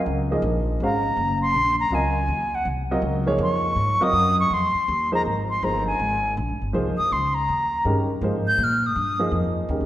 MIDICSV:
0, 0, Header, 1, 5, 480
1, 0, Start_track
1, 0, Tempo, 370370
1, 1047, Time_signature, 4, 2, 24, 8
1, 12776, End_track
2, 0, Start_track
2, 0, Title_t, "Flute"
2, 0, Program_c, 0, 73
2, 1086, Note_on_c, 0, 82, 82
2, 1798, Note_off_c, 0, 82, 0
2, 1835, Note_on_c, 0, 84, 104
2, 2278, Note_off_c, 0, 84, 0
2, 2329, Note_on_c, 0, 82, 100
2, 2518, Note_on_c, 0, 80, 83
2, 2538, Note_off_c, 0, 82, 0
2, 3301, Note_on_c, 0, 78, 85
2, 3320, Note_off_c, 0, 80, 0
2, 3461, Note_off_c, 0, 78, 0
2, 4440, Note_on_c, 0, 85, 94
2, 5225, Note_on_c, 0, 87, 121
2, 5244, Note_off_c, 0, 85, 0
2, 5686, Note_off_c, 0, 87, 0
2, 5702, Note_on_c, 0, 85, 104
2, 5876, Note_on_c, 0, 84, 90
2, 5896, Note_off_c, 0, 85, 0
2, 6644, Note_off_c, 0, 84, 0
2, 6666, Note_on_c, 0, 82, 107
2, 6760, Note_off_c, 0, 82, 0
2, 7125, Note_on_c, 0, 84, 83
2, 7308, Note_on_c, 0, 82, 82
2, 7327, Note_off_c, 0, 84, 0
2, 7601, Note_off_c, 0, 82, 0
2, 7609, Note_on_c, 0, 80, 87
2, 8211, Note_off_c, 0, 80, 0
2, 9039, Note_on_c, 0, 87, 100
2, 9231, Note_on_c, 0, 84, 88
2, 9251, Note_off_c, 0, 87, 0
2, 9516, Note_on_c, 0, 82, 96
2, 9536, Note_off_c, 0, 84, 0
2, 10171, Note_off_c, 0, 82, 0
2, 10981, Note_on_c, 0, 91, 109
2, 11191, Note_on_c, 0, 89, 97
2, 11211, Note_off_c, 0, 91, 0
2, 11484, Note_on_c, 0, 87, 90
2, 11504, Note_off_c, 0, 89, 0
2, 12115, Note_off_c, 0, 87, 0
2, 12776, End_track
3, 0, Start_track
3, 0, Title_t, "Upright piano"
3, 0, Program_c, 1, 0
3, 0, Note_on_c, 1, 54, 73
3, 0, Note_on_c, 1, 60, 68
3, 0, Note_on_c, 1, 65, 62
3, 0, Note_on_c, 1, 70, 70
3, 0, Note_on_c, 1, 75, 75
3, 365, Note_off_c, 1, 54, 0
3, 366, Note_off_c, 1, 60, 0
3, 366, Note_off_c, 1, 70, 0
3, 367, Note_off_c, 1, 65, 0
3, 369, Note_off_c, 1, 75, 0
3, 403, Note_on_c, 1, 58, 69
3, 409, Note_on_c, 1, 63, 65
3, 411, Note_on_c, 1, 53, 74
3, 413, Note_on_c, 1, 75, 83
3, 414, Note_on_c, 1, 68, 72
3, 1017, Note_off_c, 1, 58, 0
3, 1021, Note_off_c, 1, 63, 0
3, 1022, Note_off_c, 1, 53, 0
3, 1023, Note_off_c, 1, 68, 0
3, 1023, Note_off_c, 1, 75, 0
3, 1064, Note_on_c, 1, 56, 69
3, 1076, Note_on_c, 1, 66, 63
3, 1077, Note_on_c, 1, 61, 60
3, 1082, Note_on_c, 1, 72, 61
3, 1085, Note_on_c, 1, 77, 77
3, 1329, Note_off_c, 1, 56, 0
3, 1335, Note_off_c, 1, 61, 0
3, 1335, Note_off_c, 1, 66, 0
3, 1337, Note_off_c, 1, 72, 0
3, 1339, Note_off_c, 1, 77, 0
3, 2488, Note_on_c, 1, 54, 66
3, 2489, Note_on_c, 1, 60, 58
3, 2494, Note_on_c, 1, 70, 55
3, 2497, Note_on_c, 1, 65, 61
3, 2502, Note_on_c, 1, 75, 71
3, 2760, Note_off_c, 1, 54, 0
3, 2760, Note_off_c, 1, 60, 0
3, 2763, Note_off_c, 1, 70, 0
3, 2764, Note_off_c, 1, 65, 0
3, 2767, Note_off_c, 1, 75, 0
3, 3772, Note_on_c, 1, 60, 69
3, 3775, Note_on_c, 1, 54, 83
3, 3779, Note_on_c, 1, 65, 77
3, 3779, Note_on_c, 1, 70, 73
3, 3782, Note_on_c, 1, 75, 90
3, 4209, Note_off_c, 1, 60, 0
3, 4211, Note_off_c, 1, 54, 0
3, 4213, Note_off_c, 1, 65, 0
3, 4213, Note_off_c, 1, 70, 0
3, 4214, Note_off_c, 1, 75, 0
3, 4231, Note_on_c, 1, 58, 75
3, 4238, Note_on_c, 1, 53, 77
3, 4239, Note_on_c, 1, 63, 73
3, 4241, Note_on_c, 1, 68, 75
3, 4244, Note_on_c, 1, 73, 99
3, 4850, Note_off_c, 1, 58, 0
3, 4854, Note_off_c, 1, 53, 0
3, 4854, Note_off_c, 1, 63, 0
3, 4855, Note_off_c, 1, 68, 0
3, 4857, Note_off_c, 1, 73, 0
3, 5192, Note_on_c, 1, 60, 71
3, 5196, Note_on_c, 1, 54, 88
3, 5201, Note_on_c, 1, 70, 82
3, 5203, Note_on_c, 1, 65, 79
3, 5206, Note_on_c, 1, 75, 98
3, 5811, Note_off_c, 1, 60, 0
3, 5813, Note_off_c, 1, 54, 0
3, 5815, Note_off_c, 1, 70, 0
3, 5817, Note_off_c, 1, 65, 0
3, 5818, Note_off_c, 1, 75, 0
3, 6634, Note_on_c, 1, 53, 76
3, 6634, Note_on_c, 1, 63, 69
3, 6637, Note_on_c, 1, 58, 66
3, 6643, Note_on_c, 1, 68, 72
3, 6645, Note_on_c, 1, 72, 86
3, 6790, Note_off_c, 1, 53, 0
3, 6790, Note_off_c, 1, 63, 0
3, 6791, Note_off_c, 1, 58, 0
3, 6794, Note_off_c, 1, 68, 0
3, 6795, Note_off_c, 1, 72, 0
3, 7299, Note_on_c, 1, 58, 49
3, 7300, Note_on_c, 1, 53, 55
3, 7308, Note_on_c, 1, 68, 53
3, 7309, Note_on_c, 1, 63, 51
3, 7310, Note_on_c, 1, 72, 65
3, 8016, Note_off_c, 1, 53, 0
3, 8016, Note_off_c, 1, 58, 0
3, 8020, Note_off_c, 1, 68, 0
3, 8021, Note_off_c, 1, 63, 0
3, 8021, Note_off_c, 1, 72, 0
3, 8724, Note_on_c, 1, 53, 73
3, 8733, Note_on_c, 1, 58, 59
3, 8740, Note_on_c, 1, 63, 61
3, 8742, Note_on_c, 1, 72, 74
3, 8745, Note_on_c, 1, 68, 66
3, 8999, Note_off_c, 1, 53, 0
3, 9004, Note_off_c, 1, 58, 0
3, 9007, Note_off_c, 1, 63, 0
3, 9008, Note_off_c, 1, 72, 0
3, 9009, Note_off_c, 1, 68, 0
3, 10175, Note_on_c, 1, 56, 69
3, 10181, Note_on_c, 1, 51, 72
3, 10181, Note_on_c, 1, 61, 67
3, 10187, Note_on_c, 1, 67, 62
3, 10193, Note_on_c, 1, 70, 74
3, 10445, Note_off_c, 1, 56, 0
3, 10448, Note_off_c, 1, 51, 0
3, 10448, Note_off_c, 1, 61, 0
3, 10451, Note_off_c, 1, 67, 0
3, 10454, Note_off_c, 1, 70, 0
3, 10662, Note_on_c, 1, 58, 62
3, 10666, Note_on_c, 1, 53, 66
3, 10674, Note_on_c, 1, 63, 60
3, 10678, Note_on_c, 1, 68, 63
3, 10682, Note_on_c, 1, 72, 72
3, 10929, Note_off_c, 1, 58, 0
3, 10931, Note_off_c, 1, 53, 0
3, 10935, Note_off_c, 1, 63, 0
3, 10937, Note_off_c, 1, 68, 0
3, 10939, Note_off_c, 1, 72, 0
3, 11916, Note_on_c, 1, 53, 73
3, 11916, Note_on_c, 1, 58, 72
3, 11918, Note_on_c, 1, 63, 69
3, 11918, Note_on_c, 1, 68, 72
3, 11927, Note_on_c, 1, 75, 77
3, 12535, Note_off_c, 1, 53, 0
3, 12535, Note_off_c, 1, 58, 0
3, 12536, Note_off_c, 1, 63, 0
3, 12536, Note_off_c, 1, 68, 0
3, 12541, Note_off_c, 1, 75, 0
3, 12577, Note_on_c, 1, 61, 53
3, 12577, Note_on_c, 1, 70, 63
3, 12578, Note_on_c, 1, 56, 53
3, 12578, Note_on_c, 1, 67, 51
3, 12579, Note_on_c, 1, 51, 57
3, 12776, Note_off_c, 1, 51, 0
3, 12776, Note_off_c, 1, 56, 0
3, 12776, Note_off_c, 1, 61, 0
3, 12776, Note_off_c, 1, 67, 0
3, 12776, Note_off_c, 1, 70, 0
3, 12776, End_track
4, 0, Start_track
4, 0, Title_t, "Upright bass"
4, 0, Program_c, 2, 32
4, 77, Note_on_c, 2, 37, 81
4, 537, Note_off_c, 2, 37, 0
4, 544, Note_on_c, 2, 34, 95
4, 1021, Note_off_c, 2, 34, 0
4, 1037, Note_on_c, 2, 32, 81
4, 1501, Note_off_c, 2, 32, 0
4, 1509, Note_on_c, 2, 30, 84
4, 1982, Note_off_c, 2, 30, 0
4, 2000, Note_on_c, 2, 34, 88
4, 2461, Note_off_c, 2, 34, 0
4, 2469, Note_on_c, 2, 37, 83
4, 2942, Note_off_c, 2, 37, 0
4, 2957, Note_on_c, 2, 39, 83
4, 3426, Note_off_c, 2, 39, 0
4, 3436, Note_on_c, 2, 36, 92
4, 3902, Note_off_c, 2, 36, 0
4, 3910, Note_on_c, 2, 37, 89
4, 4377, Note_off_c, 2, 37, 0
4, 4385, Note_on_c, 2, 41, 99
4, 4860, Note_off_c, 2, 41, 0
4, 4869, Note_on_c, 2, 44, 80
4, 5158, Note_off_c, 2, 44, 0
4, 5348, Note_on_c, 2, 42, 92
4, 5822, Note_off_c, 2, 42, 0
4, 5838, Note_on_c, 2, 41, 92
4, 6124, Note_off_c, 2, 41, 0
4, 6327, Note_on_c, 2, 39, 95
4, 6792, Note_off_c, 2, 39, 0
4, 6808, Note_on_c, 2, 32, 76
4, 7273, Note_off_c, 2, 32, 0
4, 7290, Note_on_c, 2, 31, 90
4, 7754, Note_off_c, 2, 31, 0
4, 7767, Note_on_c, 2, 32, 85
4, 8232, Note_off_c, 2, 32, 0
4, 8255, Note_on_c, 2, 34, 88
4, 8411, Note_on_c, 2, 32, 62
4, 8431, Note_off_c, 2, 34, 0
4, 8565, Note_off_c, 2, 32, 0
4, 8572, Note_on_c, 2, 31, 68
4, 8719, Note_off_c, 2, 31, 0
4, 8739, Note_on_c, 2, 36, 73
4, 9016, Note_off_c, 2, 36, 0
4, 9222, Note_on_c, 2, 37, 84
4, 9681, Note_off_c, 2, 37, 0
4, 9701, Note_on_c, 2, 39, 82
4, 10161, Note_off_c, 2, 39, 0
4, 10170, Note_on_c, 2, 43, 88
4, 10635, Note_off_c, 2, 43, 0
4, 10645, Note_on_c, 2, 44, 85
4, 11112, Note_off_c, 2, 44, 0
4, 11120, Note_on_c, 2, 46, 92
4, 11590, Note_off_c, 2, 46, 0
4, 11606, Note_on_c, 2, 43, 88
4, 12063, Note_off_c, 2, 43, 0
4, 12071, Note_on_c, 2, 41, 86
4, 12545, Note_off_c, 2, 41, 0
4, 12553, Note_on_c, 2, 39, 84
4, 12708, Note_on_c, 2, 36, 63
4, 12727, Note_off_c, 2, 39, 0
4, 12776, Note_off_c, 2, 36, 0
4, 12776, End_track
5, 0, Start_track
5, 0, Title_t, "Muted upright bass strokes"
5, 5188, Note_on_c, 9, 29, 42
5, 5318, Note_off_c, 9, 29, 0
5, 6151, Note_on_c, 9, 29, 43
5, 6281, Note_off_c, 9, 29, 0
5, 9057, Note_on_c, 9, 29, 40
5, 9187, Note_off_c, 9, 29, 0
5, 12776, End_track
0, 0, End_of_file